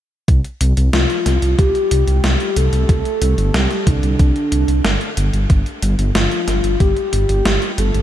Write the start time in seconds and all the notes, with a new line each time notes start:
0.28 C2, kick, closed hi-hat
0.45 closed hi-hat
0.61 C2, closed hi-hat
0.77 C2, closed hi-hat
0.93 C2 F4, snare, closed hi-hat
1.10 closed hi-hat
1.26 C2, snare, closed hi-hat
1.42 C2, closed hi-hat
1.59 C2 G4, kick, closed hi-hat
1.75 closed hi-hat
1.91 C2, closed hi-hat
2.08 C2, closed hi-hat
2.24 C2, snare, closed hi-hat
2.40 closed hi-hat
2.56 C2 A4, closed hi-hat
2.73 C2, closed hi-hat
2.89 C2, kick, closed hi-hat
3.05 closed hi-hat
3.22 C2, closed hi-hat
3.38 G1, closed hi-hat
3.54 C2 G4, snare, closed hi-hat
3.71 snare, closed hi-hat
3.87 C2 D4, kick, closed hi-hat
4.03 C2, closed hi-hat
4.19 C2, kick, closed hi-hat
4.36 closed hi-hat
4.52 C2, closed hi-hat
4.68 C2, closed hi-hat
4.85 G1, snare, closed hi-hat
5.01 closed hi-hat
5.17 G1, closed hi-hat
5.33 G1, closed hi-hat
5.50 G1, kick, closed hi-hat
5.66 closed hi-hat
5.82 G1, closed hi-hat
5.99 G1, closed hi-hat
6.15 G1 F4, snare, closed hi-hat
6.31 closed hi-hat
6.48 G1, snare, closed hi-hat
6.64 G1, closed hi-hat
6.80 G1 G4, kick, closed hi-hat
6.97 closed hi-hat
7.13 G1, closed hi-hat
7.29 G1, closed hi-hat
7.45 G1, snare, closed hi-hat
7.62 closed hi-hat
7.78 G1 A4, closed hi-hat
7.94 G1, closed hi-hat